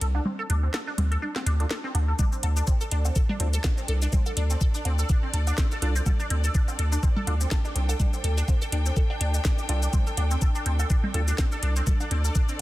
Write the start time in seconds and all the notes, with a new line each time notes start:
0.01 C2 A4, closed hi-hat
0.15 D4, low woodblock
0.25 C4, low conga
0.39 A4
0.50 D2 D4, closed hi-hat
0.63 C4
0.74 A4, snare, low woodblock
0.87 D4
0.98 D2 C4, closed hi-hat, low conga
1.11 A4, closed hi-hat
1.22 D4
1.36 C4, snare, low woodblock
1.46 D2 D4, closed hi-hat
1.60 D4 F4 A4, closed hi-hat
1.70 A4, snare
1.84 C4
1.95 D2 D4, closed hi-hat, low woodblock
2.08 A4
2.19 D4, kick, low conga, cabasa
2.32 C4, cabasa
2.43 D2 A4, closed hi-hat, low woodblock
2.54 D4 A4, cabasa
2.67 C4, kick, cabasa
2.81 A4, cabasa
2.91 D2 D4, closed hi-hat
3.05 C4, cabasa, low woodblock
3.16 A4, kick, cabasa
3.29 D4, low conga
3.40 D2 C4 D4 F4 A4, closed hi-hat
3.53 A4, closed hi-hat, cabasa
3.60 D5
3.64 D4, kick, snare, cabasa, low woodblock
3.78 C4, cabasa
3.88 C2 A4, closed hi-hat
4.02 D4, cabasa
4.13 C4, kick, low conga, cabasa
4.26 A4, cabasa, low woodblock
4.37 D2 D4, closed hi-hat
4.50 C4, cabasa
4.61 A4, kick, cabasa
4.74 D4, cabasa
4.85 D2 C4, closed hi-hat, low woodblock
4.99 A4, cabasa
5.09 D4, kick, cabasa
5.23 C4
5.34 D2 A4, closed hi-hat
5.47 D4, closed hi-hat, cabasa, low woodblock
5.58 C4, kick, snare, cabasa
5.71 A4, cabasa
5.82 C2 D4 F4 A4, closed hi-hat
5.96 C4, cabasa
6.06 A4, kick, low conga, cabasa, low woodblock
6.20 D4, cabasa
6.30 D2 C4, closed hi-hat
6.44 A4, cabasa
6.55 D4, kick, cabasa
6.68 C4, cabasa, low woodblock
6.79 D2 A4, closed hi-hat
6.92 D4, cabasa
7.03 C4, kick, cabasa
7.16 A4, low conga
7.27 D2 D4 F4 A4, closed hi-hat, low woodblock
7.41 C4, closed hi-hat, cabasa
7.48 A4 G5, kick, snare, cabasa
7.65 D4, cabasa
7.75 C2 C4, closed hi-hat
7.89 A4, cabasa, low woodblock
8.00 D4, kick, low conga, cabasa
8.13 C4, cabasa
8.24 D2 A4, closed hi-hat
8.37 D4, cabasa
8.48 C4, kick, cabasa, low woodblock
8.62 A4, cabasa
8.72 D2 D4, closed hi-hat
8.86 C4, cabasa
8.96 A4, kick, cabasa
9.10 D4, low woodblock
9.21 D2 D4, closed hi-hat
9.34 D4, closed hi-hat, cabasa
9.45 D4, kick, snare, cabasa
9.58 D4, cabasa
9.69 C2 D4 F4 A4 D5, closed hi-hat, low woodblock
9.83 D4, cabasa
9.93 C4, kick, low conga, cabasa
10.07 A4, cabasa
10.17 D2 D4, closed hi-hat, low woodblock
10.31 C4, cabasa
10.42 A4, kick, cabasa
10.55 D4, cabasa
10.66 D2 C4, closed hi-hat
10.79 A4, cabasa, low woodblock
10.90 D4, kick, cabasa
11.04 C4, low conga
11.14 D2 D4 F4 A4, closed hi-hat
11.28 D4, closed hi-hat, cabasa
11.35 C4 D5, kick, snare, cabasa, low woodblock
11.52 A4, cabasa
11.63 C2 D4, closed hi-hat
11.76 C4, cabasa
11.87 A4, kick, low conga, cabasa
12.00 D4, cabasa, low woodblock
12.11 D2 C4, closed hi-hat
12.25 A4, cabasa
12.35 D4, kick, cabasa
12.49 C4, cabasa